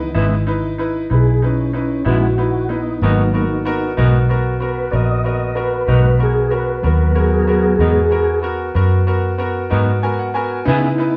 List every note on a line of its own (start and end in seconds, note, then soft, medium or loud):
0.00 0.13 C#2 medium
0.00 0.11 E3 soft
0.00 0.11 B3 soft
0.00 0.12 D#4 soft
0.14 1.08 G#1 medium
0.14 0.35 C#3 medium
0.14 0.35 G#3 medium
0.14 0.34 B3 medium
0.14 0.39 D#4 medium
0.14 0.34 E4 medium
0.14 0.39 E4 medium
0.14 0.40 B4 medium
0.47 0.71 D#4 medium
0.47 0.71 E4 soft
0.47 0.72 B4 medium
0.78 1.02 D#4 medium
0.78 1.03 E4 medium
0.78 1.03 B4 medium
1.10 2.03 B1 medium
1.10 1.34 D#4 soft
1.10 1.35 E4 soft
1.10 1.43 G#4 medium
1.10 1.35 B4 medium
1.42 1.74 C#4 medium
1.42 1.66 D#4 medium
1.42 1.67 E4 soft
1.42 1.67 B4 medium
1.72 1.76 C4 medium
1.72 1.98 D#4 medium
1.72 1.98 E4 soft
1.72 1.98 B4 medium
1.77 2.07 C#4 medium
2.05 2.99 A#1 medium
2.05 2.26 C#3 medium
2.05 2.26 G#3 medium
2.05 2.25 B3 medium
2.05 2.29 D#4 soft
2.05 2.25 E4 medium
2.05 2.30 E4 soft
2.05 2.69 F#4 medium
2.05 2.30 B4 soft
2.38 2.62 D#4 soft
2.38 2.62 E4 soft
2.38 2.62 B4 medium
2.69 3.02 B3 medium
2.69 2.93 D#4 medium
2.69 3.93 D#4 medium
2.69 2.94 E4 soft
2.69 2.94 B4 medium
3.02 3.95 G#1 medium
3.02 3.21 G#2 medium
3.02 3.44 F#3 soft
3.02 3.21 F#3 medium
3.02 3.44 A#3 soft
3.02 3.26 B3 medium
3.02 3.45 B3 medium
3.02 3.22 B3 medium
3.02 3.22 D#4 medium
3.02 3.26 F#4 medium
3.02 3.26 A#4 medium
3.33 3.57 B3 medium
3.33 3.58 F#4 soft
3.33 3.58 A#4 medium
3.65 3.89 B3 medium
3.65 3.89 F#4 medium
3.65 3.90 A#4 medium
3.97 4.90 B1 medium
3.97 4.18 G#2 medium
3.97 4.17 F#3 medium
3.97 4.21 B3 medium
3.97 4.17 B3 medium
3.97 4.16 D#4 medium
3.97 4.21 F#4 medium
3.97 4.22 A#4 medium
4.29 4.53 B3 medium
4.29 4.53 F#4 medium
4.29 4.54 A#4 medium
4.60 4.84 B3 medium
4.60 4.85 F#4 soft
4.60 4.85 A#4 medium
4.60 4.92 B4 medium
4.91 5.86 A#1 medium
4.91 5.16 B3 soft
4.91 5.16 F#4 soft
4.91 5.17 A#4 medium
4.91 4.94 D5 medium
4.95 5.25 D#5 medium
5.24 5.48 B3 medium
5.24 5.49 F#4 soft
5.24 5.49 A#4 medium
5.28 5.57 D#5 medium
5.55 5.80 B3 medium
5.55 5.80 F#4 soft
5.55 5.58 A#4 medium
5.55 5.81 A#4 medium
5.55 6.20 B4 medium
5.87 6.81 B1 medium
5.87 6.09 G#2 medium
5.87 6.08 F#3 medium
5.87 6.11 B3 soft
5.87 6.08 B3 medium
5.87 6.08 D#4 medium
5.87 6.12 F#4 soft
5.87 6.12 A#4 medium
6.18 6.43 B3 soft
6.18 6.44 F#4 soft
6.18 6.44 A#4 medium
6.23 6.53 G#4 medium
6.50 6.75 B3 medium
6.50 6.76 F#4 soft
6.50 6.54 A#4 medium
6.50 6.76 A#4 medium
6.55 7.16 B4 medium
6.82 7.77 D#2 medium
6.82 7.75 F#3 soft
6.82 7.08 B3 medium
6.82 7.76 B3 medium
6.82 7.08 F#4 soft
6.82 7.76 A#4 soft
6.82 7.08 A#4 medium
7.15 7.39 B3 medium
7.15 7.40 F#4 medium
7.15 8.39 G#4 loud
7.15 7.40 A#4 medium
7.47 7.71 B3 medium
7.47 7.72 F#4 medium
7.47 7.72 A#4 medium
7.79 8.72 E2 medium
7.79 8.00 G#2 medium
7.79 8.00 F#3 medium
7.79 8.03 B3 medium
7.79 8.00 B3 medium
7.79 7.99 D#4 medium
7.79 8.04 F#4 soft
7.79 8.04 A#4 medium
8.10 8.35 B3 medium
8.10 8.35 F#4 soft
8.10 8.36 A#4 medium
8.42 8.67 B3 medium
8.42 8.67 F#4 medium
8.42 8.68 A#4 medium
8.75 9.68 F#2 medium
8.75 8.99 B3 medium
8.75 9.00 F#4 medium
8.75 9.00 A#4 medium
9.07 9.31 B3 medium
9.07 9.31 F#4 medium
9.07 9.32 A#4 medium
9.38 9.63 B3 medium
9.38 9.63 F#4 medium
9.38 9.63 A#4 medium
9.70 10.64 G#2 medium
9.70 9.91 G#2 medium
9.70 9.91 F#3 medium
9.70 9.94 B3 medium
9.70 9.91 B3 medium
9.70 9.90 D#4 medium
9.70 9.95 F#4 medium
9.70 9.95 A#4 medium
10.02 10.27 B3 medium
10.02 10.27 F#4 medium
10.02 10.27 A#4 medium
10.02 10.18 G#5 medium
10.19 10.34 F#5 soft
10.34 10.58 B3 medium
10.34 10.59 F#4 medium
10.34 10.59 A#4 medium
10.34 10.64 G#5 medium
10.65 10.86 C#3 medium
10.65 11.17 C#3 medium
10.65 11.17 B3 soft
10.65 10.87 B3 medium
10.65 10.90 D#4 medium
10.65 11.17 D#4 medium
10.65 11.17 E4 soft
10.65 10.90 E4 medium
10.65 10.87 E4 medium
10.65 10.91 B4 medium
10.69 10.87 G#4 medium
10.98 11.17 D#4 medium
10.98 11.17 E4 medium
10.98 11.17 B4 medium